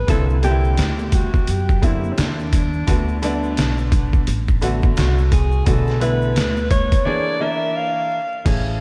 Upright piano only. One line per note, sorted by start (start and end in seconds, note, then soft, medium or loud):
0.07 0.35 D3 medium
0.07 0.35 A#3 medium
0.07 0.35 C4 medium
0.07 0.35 E4 medium
0.42 1.43 D3 medium
0.42 1.43 A#3 medium
0.42 1.44 C4 medium
0.42 0.51 D4 medium
0.50 1.47 E4 medium
1.82 2.58 D3 medium
1.82 2.58 A#3 medium
1.82 2.58 C4 medium
1.82 2.58 E4 medium
2.87 3.14 D3 medium
2.87 3.14 A3 medium
2.87 3.15 B3 medium
2.87 3.15 F#4 medium
3.22 4.22 D3 medium
3.22 4.23 A3 medium
3.22 4.23 B3 medium
3.22 4.23 D4 medium
4.61 5.37 D3 medium
4.61 5.37 A3 medium
4.61 5.38 B3 medium
4.61 5.38 F#4 medium
5.66 5.93 D3 medium
5.66 5.93 A3 medium
5.66 5.93 B3 medium
5.66 5.94 F#4 medium
6.00 7.01 D3 medium
6.00 7.01 A3 medium
6.00 7.02 B3 medium
6.00 7.02 E4 medium
7.05 7.35 E3 medium
7.05 7.35 A#3 medium
7.05 7.35 D4 medium
7.05 7.36 G#4 medium
7.40 8.16 E3 medium
7.40 8.16 A#3 medium
7.40 8.16 D4 medium
7.40 8.16 A#4 medium
8.45 8.81 E3 medium
8.45 8.81 A3 medium
8.45 8.81 C#4 medium
8.45 8.81 G#4 medium